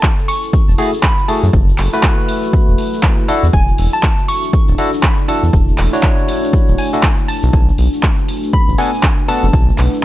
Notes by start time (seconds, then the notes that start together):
Already playing: E4 F#4 A4 A5
0.03 kick, clap, shaker
0.19 shaker
0.28 C#6, open hi-hat
0.43 shaker
0.53 kick, shaker
0.68 E1, shaker
0.78 A3 E4 F#4 G#4, open hi-hat
0.94 shaker
1.03 B5, kick, clap, shaker
1.18 shaker
1.28 A3 E4 F#4 G#4 A5, open hi-hat
1.43 F#2, shaker
1.53 F#1, kick, shaker
1.69 shaker
1.78 F#1, clap, open hi-hat
1.93 A3 E4 F#4 B4, shaker
2.03 kick, clap, shaker
2.19 shaker
2.28 open hi-hat
2.44 shaker
2.53 kick, shaker
2.68 E1, shaker
2.78 open hi-hat
2.93 shaker
3.03 kick, clap, shaker
3.19 shaker
3.28 A3 D4 E4 F#4 A4, open hi-hat
3.43 E2, shaker
3.53 E1 G#5, kick, shaker
3.67 shaker
3.78 E1, open hi-hat
3.93 A5, shaker
4.03 kick, clap, shaker
4.18 shaker
4.28 C#6, open hi-hat
4.43 shaker
4.53 kick, shaker
4.68 D1, shaker
4.78 D4 E4 F#4 A4, open hi-hat
4.93 shaker
5.03 B5, kick, clap, shaker
5.18 shaker
5.28 D4 E4 F#4 A4 A5, open hi-hat
5.43 E2, shaker
5.53 E1, kick, shaker
5.68 shaker
5.78 E1, clap, open hi-hat
5.93 D4 E4 F#4 C#5, shaker
6.03 kick, clap, shaker
6.18 shaker
6.28 open hi-hat
6.44 shaker
6.53 kick, shaker
6.68 D1, shaker
6.78 G#5, open hi-hat
6.93 D4 E4 F#4 A4, shaker
7.03 kick, clap, shaker
7.18 shaker
7.28 A3 D4 F#4 B4 A5, open hi-hat
7.43 B1, shaker
7.53 B1, kick, shaker
7.68 shaker
7.78 B1, open hi-hat
7.93 shaker
8.03 kick, clap, shaker
8.18 shaker
8.28 open hi-hat
8.43 shaker
8.53 B5, kick, shaker
8.68 A1, shaker
8.78 B3 D4 F#4 A4 G#5, open hi-hat
8.94 shaker
9.03 kick, clap, shaker
9.18 shaker
9.28 B3 D4 E4 F#4 A4 A5, open hi-hat
9.43 F#1, shaker
9.53 B1, kick, shaker
9.69 shaker
9.78 B1, clap, open hi-hat
9.94 shaker